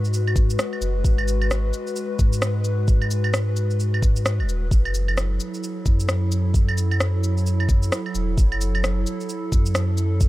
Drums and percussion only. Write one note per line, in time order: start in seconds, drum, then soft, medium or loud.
0.05 shaker soft
0.14 shaker medium
0.27 claves medium
0.36 kick loud
0.36 cabasa medium
0.50 shaker medium
0.59 cross-stick loud
0.59 shaker medium
0.73 claves soft
0.82 cabasa medium
1.04 kick loud
1.04 shaker medium
1.18 claves medium
1.28 cabasa medium
1.28 shaker medium
1.42 claves medium
1.51 cross-stick loud
1.51 shaker medium
1.73 cabasa medium
1.87 shaker soft
1.96 shaker medium
2.19 kick loud
2.19 cabasa medium
2.33 shaker medium
2.42 cross-stick loud
2.42 shaker medium
2.64 cabasa medium
2.88 kick loud
2.88 shaker medium
3.02 claves medium
3.11 cabasa medium
3.11 shaker medium
3.24 claves medium
3.34 cross-stick loud
3.34 shaker medium
3.57 cabasa medium
3.71 shaker soft
3.80 shaker medium
3.94 claves medium
4.02 kick loud
4.02 cabasa medium
4.16 shaker medium
4.26 cross-stick loud
4.26 shaker medium
4.40 claves soft
4.49 cabasa medium
4.71 kick loud
4.71 shaker medium
4.85 claves medium
4.94 cabasa medium
4.94 shaker medium
5.08 claves medium
5.17 cross-stick loud
5.17 shaker medium
5.40 cabasa medium
5.54 shaker soft
5.64 shaker medium
5.86 kick loud
5.86 cabasa medium
6.00 shaker medium
6.09 cross-stick loud
6.09 shaker medium
6.32 cabasa medium
6.54 kick loud
6.54 shaker medium
6.69 claves medium
6.78 cabasa medium
6.78 shaker medium
6.91 claves medium
7.00 cross-stick loud
7.00 shaker medium
7.24 cabasa medium
7.38 shaker soft
7.47 shaker medium
7.60 claves medium
7.69 kick loud
7.69 cabasa medium
7.83 shaker medium
7.92 cross-stick loud
7.92 shaker medium
8.06 claves soft
8.15 cabasa medium
8.38 kick loud
8.38 shaker medium
8.52 claves medium
8.61 cabasa medium
8.61 shaker medium
8.75 claves medium
8.84 cross-stick loud
8.84 shaker medium
9.07 cabasa medium
9.21 shaker soft
9.29 shaker medium
9.52 kick loud
9.52 cabasa medium
9.66 shaker medium
9.75 cross-stick loud
9.75 shaker medium
9.98 cabasa medium
10.21 kick loud
10.21 shaker medium